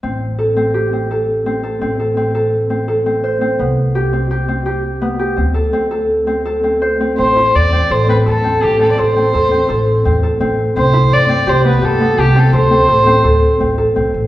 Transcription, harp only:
\new Staff \with { instrumentName = "Harp" } { \time 5/4 \key a \minor \tempo 4 = 168 c'4 a'8 c'8 g'8 c'8 a'4 c'8 a'8 | c'8 a'8 c'8 a'4 c'8 a'8 c'8 c''8 c'8 | b4 g'8 c'8 g'8 c'8 g'4 b8 g'8 | c'8 a'8 c'8 a'4 c'8 a'8 c'8 c''8 c'8 |
c'8 e'4 c'8 a'8 c'8 a'8 c'8 a'8 c'8 | a'8 c'8 a'8 c'8 a'4 c'8 a'8 c'4 | c'8 e'4 c'8 g'8 b8 g'8 b8 g'8 c'8 | a'8 c'8 a'8 c'8 a'4 c'8 a'8 c'4 | }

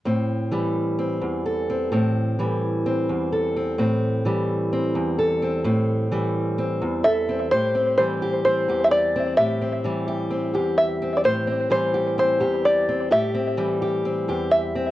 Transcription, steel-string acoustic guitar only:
\new Staff \with { instrumentName = "Steel-string acoustic guitar" } { \time 4/4 \key a \minor \tempo 4 = 129 << { c'4 g4 c'4 a'8 c'8 | c'4 g4 c'4 a'8 c'8 | c'4 g4 c'4 a'8 c'8 | c'4 g4 c'4 a'8 c'8 |
g'8 c'8 g8 g'8 c'8 g'4 c'8 | g'8 c'8 g8 g'8 c'8 g'4 c'8 | g'8 c'8 g8 g'8 c'8 g'4 c'8 | g'8 c'8 g8 g'8 c'8 g'4 c'8 | } \\ { a,4 e4. e,4. | a,4 e4. e,4. | a,4 e4. e,4. | a,4 e4. e,4. |
a,4 e4. e,4. | a,4 e4. e,4. | a,4 e4. e,4. | a,4 e4. e,4. | } >> }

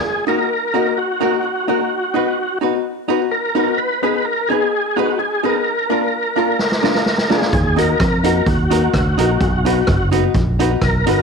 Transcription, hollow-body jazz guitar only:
\new Staff \with { instrumentName = "Hollow-body jazz guitar" } { \time 4/4 \key ees \minor \tempo 4 = 128 r8 <ees' ges' bes'>16 r8. <ees' ges' bes'>16 r8. <ees' ges' bes'>16 r8. <ees' ges' bes'>16 r16 | r8 <dis' fis' b'>16 r8. <dis' fis' b'>16 r8. <dis' fis' b'>16 r8. <dis' fis' b'>16 r16 | r8 <ees' aes' ces''>16 r8. <ees' aes' ces''>16 r8. <ees' aes' ces''>16 r8. <ees' aes' ces''>16 r16 | r8 <d' f' bes'>16 r8. <d' f' bes'>16 r8. <d' f' bes'>16 r8. <d' f' bes'>16 r16 |
r8 <ees' ges' bes'>16 r8. <ees' ges' bes'>16 r8. <ees' ges' bes'>16 r8. <ees' ges' bes'>16 r16 | r8 <dis' fis' b'>16 r8. <dis' fis' b'>16 r8. <dis' fis' b'>16 r8. <dis' fis' b'>16 r16 | }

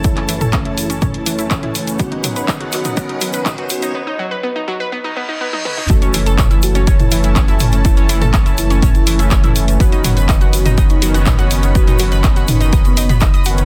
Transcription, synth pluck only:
\new Staff \with { instrumentName = "Synth pluck" } { \time 4/4 \key a \lydian \tempo 4 = 123 a16 cis'16 e16 a'16 cis'16 e'16 r16 cis'16 cis'16 r16 e16 e'16 cis'16 e'16 r8 | b16 dis'16 fis16 b'16 dis'16 fis'16 r16 dis'16 b16 dis'16 fis16 b'16 dis'16 fis'16 r16 dis'16 | b16 dis'16 fis16 b'16 b16 dis'16 fis16 b'16 b16 dis'16 b16 dis'16 b16 dis'16 b16 dis'16 | <a a'>16 <cis' cis''>16 <e e'>16 <a' a''>16 <cis' cis''>16 <e' e''>16 r16 <cis' cis''>16 <cis' cis''>16 r16 <e e'>16 <e' e''>16 <cis' cis''>16 <e' e''>16 r8 |
<a a'>16 <cis' cis''>16 <e e'>16 <a' a''>16 <cis' cis''>16 <e' e''>16 r16 <cis' cis''>16 <cis' cis''>16 r16 <e e'>16 <e' e''>16 <cis' cis''>16 <e' e''>16 r8 | <b b'>16 <dis' dis''>16 <fis fis'>16 <b' b''>16 <dis' dis''>16 <fis' fis''>16 r16 <dis' dis''>16 <dis' dis''>16 r16 <fis fis'>16 <fis' fis''>16 <dis' dis''>16 <fis' fis''>16 r8 | <b b'>16 <dis' dis''>16 <fis fis'>16 <b' b''>16 <dis' dis''>16 <fis' fis''>16 r16 <dis' dis''>16 <dis' dis''>16 r16 <dis' dis''>16 <b b'>16 <dis' dis''>16 <dis'' dis'''>16 <fis' fis''>16 r16 | }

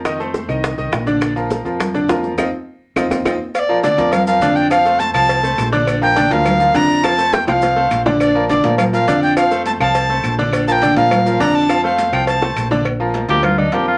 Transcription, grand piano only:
\new Staff \with { instrumentName = "Grand piano" } { \time 4/4 \key bes \major \tempo 4 = 206 <ees ees' ees''>8 <a a' c''>4 <ees ees' ees''>4 <ees ees' ees''>4 <d d' d''>8~ | <d d' d''>8 <f f' bes'>4 <f f' bes'>4 <d d' d''>8 <f f' bes'>4 | <c' ees' f'>8 r4. <c' ees' f'>8 <c' ees' f'>8 <c' ees' f'>8 r8 | r8 <f f' bes'>8 <d d' d''>8 <f f' bes'>4 <f f' bes'>8 <d d' d''>4 |
<f f' f''>8 <a a' c''>4 <f f' f''>4 <a a' c''>4 <d d' d''>8~ | <d d' d''>8 <f f' bes'>8 <d d' d''>8 <f f' bes'>4 <f f' bes'>8 <d d' d''>4 | <f f' f''>8 <a a' c''>4 <f f' f''>4 <a a' c''>4 <d d' d''>8~ | <d d' d''>8 <f f' bes'>8 <d d' d''>8 <f f' bes'>4 <f f' bes'>8 <d d' d''>4 |
<f f' f''>8 <a a' c''>4 <f f' f''>4 <a a' c''>4 <d d' d''>8~ | <d d' d''>8 <f f' bes'>8 <d d' d''>8 <f f' bes'>4 <f f' bes'>8 <d d' d''>4 | <f f' f''>8 <a a' c''>4 <f f' f''>4 <a a' c''>4 <d d' d''>8 | r8 <f f' bes'>4 <f f' bes'>4 <d d' d''>8 <f f' bes'>4 | }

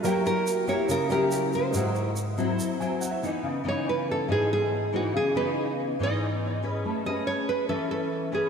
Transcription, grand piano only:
\new Staff \with { instrumentName = "Grand piano" } { \time 4/4 \key gis \phrygian \tempo 4 = 141 << { r1 | r2 r8 gis''8 fis''16 e''8. | \key cis \minor r1 | r1 |
r1 | } \\ { <fis ais' cis'' e'' g''>2~ <fis ais' cis'' e'' g''>8 <fis ais' cis'' e'' g''>4. | <gis bis' dis'' e'' fis''>1 | r1 | r1 |
r1 | } >> }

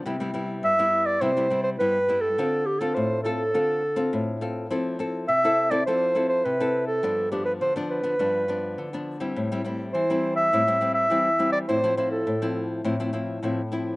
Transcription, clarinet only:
\new Staff \with { instrumentName = "Clarinet" } { \time 4/4 \key c \major \tempo 4 = 103 r4 e''8. d''16 c''8. c''16 b'8. a'16~ | a'8 g'16 a'16 c''8 a'2 r8 | r4 e''8. d''16 c''8. c''16 b'8. a'16~ | a'8 g'16 b'16 c''8 b'2 r8 |
r4 c''8. e''4 e''4 d''16 | c''8 c''16 a'4 r2 r16 | }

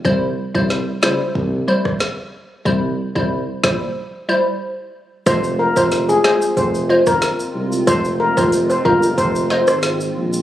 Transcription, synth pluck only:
\new Staff \with { instrumentName = "Synth pluck" } { \time 4/4 \key c \phrygian \tempo 4 = 92 <g e' c''>16 r8 <g e' c''>8. <g e' c''>8 r8 <g e' c''>16 r4 r16 | <g e' c''>16 r8 <g e' c''>8. <g e' c''>8 r8 <g e' c''>16 r4 r16 | \key f \minor <aes f' c''>16 r8 <aes f' c''>8. <aes f' c''>8 r8 <aes f' c''>16 r4 r16 | <aes f' c''>16 r8 <aes f' c''>8. <aes f' c''>8 r8 <aes f' c''>16 r4 r16 | }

